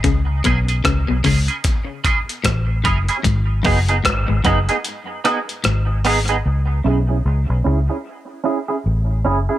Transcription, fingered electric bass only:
X:1
M:4/4
L:1/16
Q:"Swing 16ths" 1/4=75
K:C#m
V:1 name="Fingered electric bass" clef=bass
C,,2 B,,,2 C,, B,,, C,, z4 z A,,,2 F,,, z | G,,,2 F,,,2 G,,, G,,, F,,, z4 z G,,,4 | C,,2 B,,,2 C,, B,,, C,, z4 z A,,,2 F,,, z |]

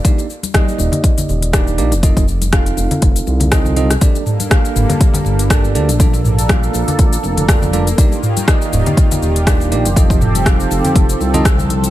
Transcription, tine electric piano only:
X:1
M:4/4
L:1/16
Q:"Swing 16ths" 1/4=121
K:Eblyd
V:1 name="Tine electric piano"
[B,DEGd]2 z2 [B,EGde]8 [B,DEGd]2 [B,DEGd] z | [CEFAe]2 z2 [CEFAf]8 [CEFAe]2 [CEFAe] z | [B,DGAd]2 z2 [B,DGAf]8 [B,DGAd]2 [B,DGAd] z | [B,DFAd]2 z2 [B,DFAf]8 [B,DFAd]2 [B,DFAd] z |
[B,DEGd]2 z2 [B,EGde]8 [B,DEGd]2 [B,DEGd] z | [CEFAe]2 z2 [CEFAf]6- [CEFAf] [CEFAe] z4 |]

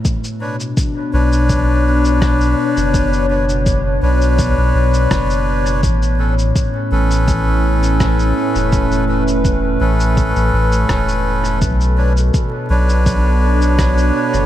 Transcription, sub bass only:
X:1
M:4/4
L:1/16
Q:1/4=83
K:Bm
V:1 name="Sub bass" clef=bass
z6 B,,,8 z F,,,- | F,,,6 B,,,3 B,,, B,,,2 F,,,4 | A,,,4 z2 A,,,8 z E,,,- | E,,,6 A,,,3 A,,, A,,,2 E,,,4 |
B,,,4 z2 B,,,8 z F,,, |]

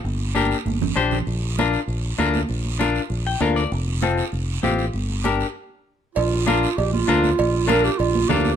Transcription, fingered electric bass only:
X:1
M:4/4
L:1/8
Q:1/4=196
K:Bb
V:1 name="Fingered electric bass" clef=bass
G,,,4 G,,,2 B,,,2 | B,,,4 B,,,2 D,,2 | B,,,4 B,,,2 D,,2 | F,,,4 F,,,2 A,,,2 |
G,,,4 z4 | B,,,4 B,,,2 D,,2 | B,,,4 B,,,2 D,,2 |]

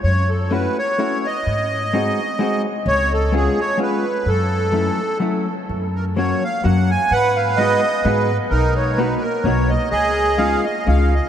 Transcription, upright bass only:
X:1
M:3/4
L:1/8
Q:"Swing" 1/4=127
K:F#m
V:1 name="Upright bass" clef=bass
F,,4 z2 | G,,4 z2 | C,,4 z2 | F,,4 z2 |
[K:F#] F,,4 F,,2 | G,,4 G,,2 | B,,,4 B,,,2 | C,,4 C,,2 |]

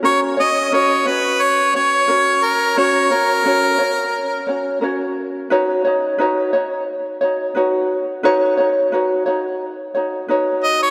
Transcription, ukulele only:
X:1
M:4/4
L:1/8
Q:"Swing 16ths" 1/4=88
K:F#
V:1 name="Ukulele"
[CFAc] [CFc] [CFAc] [CFc]2 [CFc] [CFAc]2 | [CFAc] [CFc] [CFAc] [CFc]2 [CFc] [CFAc]2 | [DFBc] [DFc] [DFBc] [DFc]2 [DFc] [DFBc]2 | [DFBc] [DFc] [DFBc] [DFc]2 [DFc] [DFBc]2 |]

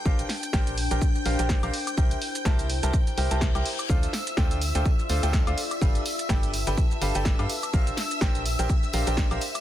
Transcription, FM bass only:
X:1
M:4/4
L:1/16
Q:"Swing 16ths" 1/4=125
K:Bblyd
V:1 name="FM bass" clef=bass
B,,, z3 B,,,3 B,,, z2 B,,, B,,,2 B,,, z2 | C,, z3 C,,3 C,, z2 C,, C,,2 C,, z2 | D,, z3 D,,3 D,, z2 D,, D,,2 D,, z2 | G,,, z3 G,,,3 G,,, z2 G,,, G,,,2 G,, z2 |
B,,, z3 B,,,3 B,,, z2 B,,, B,,,2 B,,, z2 |]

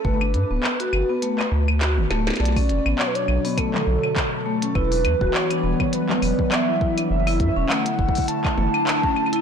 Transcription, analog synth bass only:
X:1
M:4/4
L:1/16
Q:"Swing 16ths" 1/4=102
K:Bm
V:1 name="Analog synth bass" clef=bass
G,,,2 G,, D,,, z2 G,,, z3 D,,3 G,,, D,,, z | B,,,2 F,,, A,,, z2 B,,, z3 B,,, z4 z | E,,,2 E,, D,,, z2 E,,, z3 E,,, z4 z | F,,,2 F,, E,,, z2 F,,, z3 F,,, z4 z |]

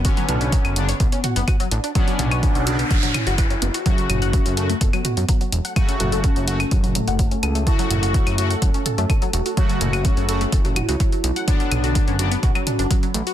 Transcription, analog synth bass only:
X:1
M:4/4
L:1/16
Q:1/4=126
K:F#m
V:1 name="Analog synth bass" clef=bass
z2 B,,,2 z F,,,2 z B,,, z2 F,,, z2 A,,, z | z2 B,,,2 z B,,,2 z F,,, z2 F,,,2 z F,,, z | z2 F,,,2 z F,,2 z F,,, z2 F,, z2 E,,, z | z2 F,,,2 z F,,,2 z F,,,2 z F,,,2 z C,,2 |
z2 F,,,2 z F,,2 z F,,, z2 F,, z2 E,,, z | z2 F,,,2 z F,,,2 z F,,,2 z C,, z2 B,,, z | z2 B,,,2 z F,,,2 z B,,, z2 F,,, z2 A,,, z |]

